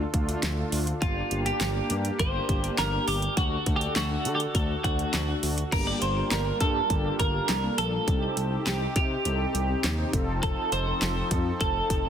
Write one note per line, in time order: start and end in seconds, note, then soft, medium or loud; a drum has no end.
0.00 0.99 D3 medium
0.00 3.33 D4 medium
0.00 0.99 F4 medium
0.00 0.99 A4 medium
0.13 0.34 D2 medium
0.13 0.43 A3 medium
0.13 0.43 D4 medium
0.13 0.43 F4 loud
0.13 kick loud
0.13 closed hi-hat medium
0.29 closed hi-hat medium
0.43 0.64 D2 loud
0.43 snare loud
0.43 closed hi-hat medium
0.58 0.87 A3 medium
0.58 0.87 D4 medium
0.58 0.87 F4 loud
0.72 0.93 D2 loud
0.72 open hi-hat medium
0.87 closed hi-hat soft
1.02 1.22 G1 loud
1.02 1.21 A#3 medium
1.02 3.35 A#3 medium
1.02 1.21 D4 medium
1.02 1.46 F4 medium
1.02 1.21 G4 medium
1.02 3.35 G4 medium
1.02 kick loud
1.02 closed hi-hat medium
1.31 1.52 G1 loud
1.31 1.61 A#3 medium
1.31 1.61 D4 medium
1.31 1.61 G4 medium
1.31 closed hi-hat medium
1.46 2.22 G4 medium
1.46 closed hi-hat medium
1.61 1.81 G1 loud
1.61 snare loud
1.61 clap medium
1.61 closed hi-hat medium
1.75 2.05 A#3 medium
1.75 2.05 D4 medium
1.75 2.05 G4 medium
1.90 2.11 G2 loud
1.90 closed hi-hat medium
2.05 closed hi-hat medium
2.19 2.40 G1 loud
2.19 2.39 A#3 medium
2.19 2.39 D4 medium
2.19 2.39 G4 medium
2.19 2.78 C5 loud
2.19 kick loud
2.19 closed hi-hat medium
2.49 2.70 G1 medium
2.49 2.78 A#3 medium
2.49 2.78 D4 medium
2.49 2.78 G4 medium
2.49 kick medium
2.49 closed hi-hat medium
2.64 closed hi-hat medium
2.78 2.99 G1 loud
2.78 3.07 A#4 loud
2.78 snare loud
2.78 clap medium
2.78 closed hi-hat medium
2.93 3.22 A#3 medium
2.93 3.22 D4 medium
2.93 3.22 G4 medium
3.08 3.28 G1 loud
3.08 3.37 G4 medium
3.08 open hi-hat medium
3.22 closed hi-hat soft
3.37 3.58 D2 loud
3.37 5.70 D3 medium
3.37 3.57 A3 medium
3.37 5.70 D4 medium
3.37 3.57 D4 medium
3.37 3.76 F#4 medium
3.37 5.70 F#4 medium
3.37 3.57 F#4 medium
3.37 5.70 A4 medium
3.37 kick loud
3.37 closed hi-hat medium
3.66 3.87 D2 loud
3.66 3.96 A3 medium
3.66 3.96 D4 medium
3.66 3.96 F#4 medium
3.66 kick loud
3.66 closed hi-hat medium
3.76 3.95 G4 medium
3.81 closed hi-hat medium
3.96 4.17 D2 loud
3.96 4.35 F#4 medium
3.96 snare loud
3.96 clap medium
3.96 closed hi-hat medium
4.11 4.40 A3 medium
4.11 4.40 D4 medium
4.11 4.40 A4 medium
4.25 4.46 D3 loud
4.25 closed hi-hat medium
4.35 4.40 G4 medium
4.40 closed hi-hat medium
4.55 4.75 D2 loud
4.55 4.74 A3 medium
4.55 4.74 D4 medium
4.55 4.74 F#4 medium
4.55 4.84 A4 medium
4.55 kick loud
4.55 closed hi-hat medium
4.84 5.05 D2 loud
4.84 5.14 A3 medium
4.84 5.14 D4 medium
4.84 5.14 F#4 medium
4.84 5.39 F#4 medium
4.84 kick medium
4.84 closed hi-hat medium
4.99 closed hi-hat medium
5.13 5.34 D2 loud
5.13 snare loud
5.13 clap medium
5.13 closed hi-hat medium
5.28 5.58 A3 medium
5.28 5.58 D4 medium
5.28 5.58 F#4 medium
5.43 5.64 D2 medium
5.43 open hi-hat medium
5.58 closed hi-hat soft
5.72 5.93 G1 loud
5.72 8.05 G3 medium
5.72 6.02 A#3 medium
5.72 8.05 A#3 medium
5.72 6.02 D4 medium
5.72 8.05 D4 medium
5.72 8.05 F4 medium
5.72 6.02 G4 medium
5.72 5.86 A#4 loud
5.72 kick loud
5.72 closed hi-hat medium
5.72 crash loud
5.87 6.01 D5 loud
6.02 6.22 G1 loud
6.02 6.31 C5 loud
6.02 closed hi-hat medium
6.17 6.46 A#3 medium
6.17 6.46 D4 medium
6.17 6.46 G4 medium
6.31 6.52 G1 loud
6.31 6.60 A#4 loud
6.31 snare loud
6.31 clap medium
6.31 closed hi-hat medium
6.61 6.81 G2 loud
6.61 6.80 A#3 medium
6.61 6.80 D4 medium
6.61 6.80 G4 medium
6.61 7.15 A4 loud
6.61 kick loud
6.61 closed hi-hat medium
6.90 7.11 G1 loud
6.90 7.19 A#3 medium
6.90 7.19 D4 medium
6.90 7.19 G4 medium
6.90 kick loud
6.90 closed hi-hat medium
7.19 7.40 G1 loud
7.19 7.78 A#4 loud
7.19 kick medium
7.19 closed hi-hat medium
7.34 7.54 A#3 medium
7.34 7.54 D4 medium
7.34 7.54 G4 medium
7.49 7.69 C2 medium
7.49 snare loud
7.49 clap medium
7.49 closed hi-hat medium
7.63 7.93 A#3 medium
7.63 7.93 D4 medium
7.63 7.93 A4 medium
7.78 7.99 A#1 medium
7.78 8.69 A4 loud
7.78 closed hi-hat medium
8.08 8.28 C2 loud
8.08 10.12 C3 medium
8.08 8.37 C4 medium
8.08 10.12 C4 medium
8.08 8.37 D#4 medium
8.08 12.09 D#4 medium
8.08 8.37 G4 medium
8.08 10.12 G4 medium
8.08 kick loud
8.08 closed hi-hat medium
8.37 8.58 C2 loud
8.37 closed hi-hat medium
8.52 8.81 C4 medium
8.52 8.81 D#4 medium
8.52 8.81 G4 medium
8.66 8.87 C2 loud
8.66 8.95 G4 medium
8.66 snare loud
8.66 clap medium
8.66 closed hi-hat medium
8.96 9.16 C3 loud
8.96 9.15 C4 medium
8.96 9.15 D#4 medium
8.96 9.15 G4 medium
8.96 9.80 G4 medium
8.96 kick medium
8.96 closed hi-hat medium
9.25 9.46 C2 loud
9.25 9.55 C4 medium
9.25 9.55 D#4 medium
9.25 9.55 A4 medium
9.25 closed hi-hat medium
9.55 9.75 C2 loud
9.55 closed hi-hat medium
9.69 9.89 C4 medium
9.69 9.89 D#4 medium
9.69 9.89 G4 loud
9.84 10.05 D#2 medium
9.84 snare loud
9.84 clap medium
9.84 closed hi-hat medium
9.99 10.12 C4 medium
9.99 10.13 D#4 medium
9.99 10.13 G4 medium
10.13 10.55 F1 loud
10.13 12.09 F3 medium
10.13 10.72 C4 loud
10.13 12.09 C4 medium
10.13 10.72 F4 medium
10.13 10.72 A4 loud
10.13 12.09 A4 medium
10.13 kick loud
10.13 closed hi-hat medium
10.43 10.72 A4 medium
10.43 kick loud
10.43 closed hi-hat medium
10.72 10.93 F1 medium
10.72 11.27 C5 loud
10.72 closed hi-hat medium
10.87 11.16 C4 medium
10.87 11.16 F4 medium
10.87 11.16 A4 medium
11.02 11.22 F1 loud
11.02 snare loud
11.02 clap medium
11.02 closed hi-hat medium
11.31 11.52 F2 loud
11.31 11.51 C4 medium
11.31 11.51 F4 medium
11.31 11.51 A4 medium
11.31 kick medium
11.31 closed hi-hat medium
11.60 11.81 F1 loud
11.60 11.90 C4 medium
11.60 11.90 F4 medium
11.60 11.90 A4 medium
11.60 12.09 A4 medium
11.60 kick loud
11.60 closed hi-hat medium
11.90 12.09 F1 loud
11.90 kick medium
11.90 closed hi-hat medium
12.05 12.09 C4 medium
12.05 12.09 F4 medium
12.05 12.09 A4 medium